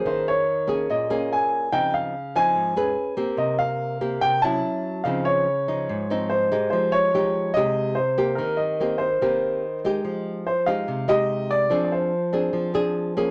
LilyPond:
<<
  \new Staff \with { instrumentName = "Grand piano" } { \time 4/4 \key f \minor \tempo 4 = 144 c''8 des''4. ees''4 aes''4 | g''8 f''4 aes''2 r8 | ees''8 f''4. g''8 a''4. | f''8 des''2~ des''8 c''4 |
c''8 des''4. ees''4 c''4 | bes'8 ees''4 c''2 r8 | r4 c''8 f''4 ees''4 d''8~ | \tuplet 3/2 { d''8 d''16 c''8.~ } c''4. r4. | }
  \new Staff \with { instrumentName = "Nylon-string guitar" } { \time 4/4 \key f \minor << { <bes des' aes'>4 r8 <bes des' aes'>4 <bes des' aes'>4. | <f c' ees'>4 r8 <f c' ees'>4 <des' aes' b'>4 <bes c' g'>8~ | <bes c' g'>4. <bes c' g'>4 <ges des' e'>4. | <f c' ees'>4 r8 <f ees'>4 <f c' ees'>4 <aes ees' g'>8~ |
<aes ees' g'>4 <aes ees' g'>4 <aes ees' g'>4 r8 <bes c' g'>8~ | <bes c' g'>4 <bes c' g'>8 r8 <bes c' g'>4 r8 <aes ees' g'>8~ | <aes ees' g'>4 r8 <aes ees' g'>4 <aes ees' g'>4. | <c' d' aes'>4 r8 <c' d' aes'>4 <c' d' aes'>4 <bes des' aes'>8 | } \\ { ees2 bes,2 | des2 aes,4 r4 | c2 c4 r4 | des2 aes,2 |
f2 c2 | ees2 ees2 | f2 c2 | f2 f2 | } >> }
>>